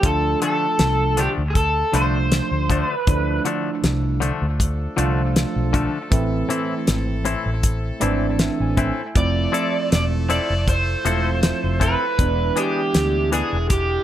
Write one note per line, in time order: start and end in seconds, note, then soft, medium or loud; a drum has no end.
0.01 0.34 D2 medium
0.01 1.22 F3 medium
0.01 1.22 A3 medium
0.01 1.23 D4 medium
0.01 1.23 F4 medium
0.01 kick loud
0.01 closed hi-hat medium
0.05 0.42 A4 medium
0.42 0.65 D3 medium
0.42 0.66 F3 medium
0.42 0.66 A3 medium
0.42 0.66 D4 medium
0.42 1.20 A4 medium
0.42 closed hi-hat medium
0.79 1.26 C2 medium
0.79 snare loud
0.79 closed hi-hat medium
1.17 1.41 D3 medium
1.17 1.41 F3 medium
1.17 1.42 A3 medium
1.17 1.42 D4 medium
1.17 1.28 G4 medium
1.17 closed hi-hat medium
1.38 1.82 D2 medium
1.50 1.56 G#4 medium
1.55 1.95 A4 medium
1.55 kick medium
1.55 closed hi-hat medium
1.92 2.40 C2 medium
1.92 2.17 D3 medium
1.92 2.84 F3 medium
1.92 2.17 F3 medium
1.92 2.84 A3 medium
1.92 2.18 A3 medium
1.92 2.84 D4 medium
1.92 2.18 D4 medium
1.92 2.84 F4 medium
1.92 2.89 C5 medium
1.92 closed hi-hat medium
2.32 snare loud
2.32 closed hi-hat medium
2.51 2.82 D2 medium
2.69 2.93 D3 medium
2.69 2.94 F3 medium
2.69 2.94 A3 medium
2.69 2.94 D4 medium
2.69 kick medium
2.69 closed hi-hat medium
2.89 3.42 B4 medium
3.06 3.38 D2 medium
3.06 4.27 F3 medium
3.06 6.08 F3 medium
3.06 9.11 A3 medium
3.06 4.28 A3 medium
3.06 6.08 D4 medium
3.06 4.28 D4 medium
3.06 4.28 E4 medium
3.06 9.11 A4 medium
3.06 kick loud
3.06 closed hi-hat medium
3.45 3.69 D3 medium
3.45 3.70 F3 medium
3.45 3.70 A3 medium
3.45 3.70 D4 medium
3.45 closed hi-hat medium
3.83 4.29 C2 medium
3.83 snare loud
3.83 closed hi-hat medium
4.20 4.45 D3 medium
4.20 4.45 F3 medium
4.20 4.45 A3 loud
4.20 4.46 D4 medium
4.20 closed hi-hat medium
4.42 4.86 D2 medium
4.60 kick medium
4.60 closed hi-hat medium
4.96 5.44 C2 medium
4.96 5.21 D3 medium
4.96 5.88 F3 medium
4.96 5.21 F3 medium
4.96 5.88 A3 medium
4.96 5.21 A3 medium
4.96 5.88 D4 medium
4.96 5.22 D4 medium
4.96 5.89 F4 medium
4.96 closed hi-hat medium
5.36 snare loud
5.36 closed hi-hat medium
5.56 5.86 B1 medium
5.73 5.97 D3 medium
5.73 5.97 F3 loud
5.73 5.98 A3 medium
5.73 5.98 D4 loud
5.73 kick medium
5.73 closed hi-hat medium
6.10 6.42 A1 medium
6.10 7.31 E3 medium
6.10 7.31 A3 medium
6.10 9.11 C4 medium
6.10 7.31 C4 medium
6.10 14.04 E4 medium
6.10 7.32 E4 medium
6.10 14.04 E5 medium
6.10 kick loud
6.10 closed hi-hat medium
6.49 6.73 A2 medium
6.49 6.73 E3 medium
6.49 6.74 C4 medium
6.49 6.74 E4 medium
6.49 closed hi-hat medium
6.87 7.34 G#1 medium
6.87 snare loud
6.87 closed hi-hat medium
7.25 7.49 A2 medium
7.25 7.49 E3 medium
7.25 7.49 C4 medium
7.25 7.50 E4 loud
7.25 closed hi-hat medium
7.46 7.90 A1 medium
7.63 kick medium
7.63 closed hi-hat medium
8.00 8.48 G#1 medium
8.00 8.25 A2 medium
8.00 8.91 E3 medium
8.00 8.25 E3 medium
8.00 8.91 A3 medium
8.00 8.92 C4 medium
8.00 8.25 C4 medium
8.00 8.92 D4 medium
8.00 8.26 E4 loud
8.00 8.36 D5 medium
8.00 closed hi-hat medium
8.39 8.58 E5 medium
8.39 snare loud
8.39 closed hi-hat medium
8.60 8.90 A1 medium
8.60 9.12 G#5 medium
8.77 9.01 A2 medium
8.77 9.01 E3 medium
8.77 9.02 C4 medium
8.77 9.02 E4 medium
8.77 kick medium
8.77 closed hi-hat medium
9.15 9.46 F1 loud
9.15 10.35 F3 medium
9.15 12.16 F3 medium
9.15 10.35 A3 medium
9.15 12.16 A3 medium
9.15 10.36 C4 medium
9.15 10.36 E4 medium
9.15 12.16 A4 medium
9.15 9.92 D5 loud
9.15 kick loud
9.15 closed hi-hat medium
9.52 9.76 F3 medium
9.52 9.77 C4 medium
9.52 9.77 E4 medium
9.52 9.77 A4 medium
9.52 closed hi-hat medium
9.92 10.38 E1 medium
9.92 10.03 D5 loud
9.92 snare loud
9.92 closed hi-hat medium
10.29 10.53 F3 medium
10.29 10.53 C4 medium
10.29 10.53 E4 medium
10.29 10.54 A4 medium
10.29 10.65 D5 medium
10.29 closed hi-hat medium
10.50 10.94 F1 medium
10.68 11.82 C5 loud
10.68 kick medium
10.68 closed hi-hat medium
11.05 11.51 E1 medium
11.05 11.96 F3 medium
11.05 11.29 F3 medium
11.05 11.96 A3 medium
11.05 11.29 C4 medium
11.05 11.96 C4 medium
11.05 11.29 E4 medium
11.05 11.96 F4 medium
11.05 11.30 A4 medium
11.05 closed hi-hat medium
11.43 snare loud
11.43 closed hi-hat medium
11.64 11.94 F1 medium
11.80 12.04 F3 medium
11.80 12.05 C4 medium
11.80 12.05 E4 medium
11.80 12.05 A4 medium
11.80 12.60 B4 medium
11.80 kick medium
11.80 closed hi-hat medium
12.18 12.49 E1 medium
12.18 14.04 D3 medium
12.18 13.39 E3 medium
12.18 14.04 G#3 medium
12.18 13.39 G#3 medium
12.18 13.39 B3 medium
12.18 14.04 D4 medium
12.18 13.40 D4 medium
12.18 kick loud
12.18 closed hi-hat medium
12.56 12.80 E3 medium
12.56 12.81 B3 medium
12.56 12.81 D4 medium
12.56 13.33 G4 medium
12.56 12.81 G#4 medium
12.56 closed hi-hat medium
12.94 13.41 D2 medium
12.94 snare loud
12.94 closed hi-hat medium
13.32 13.56 E3 medium
13.32 13.57 B3 medium
13.32 13.57 D4 medium
13.32 13.70 G#4 medium
13.32 13.57 G#4 medium
13.32 closed hi-hat medium
13.53 13.97 E1 medium
13.70 14.04 G4 medium
13.70 kick medium
13.70 closed hi-hat medium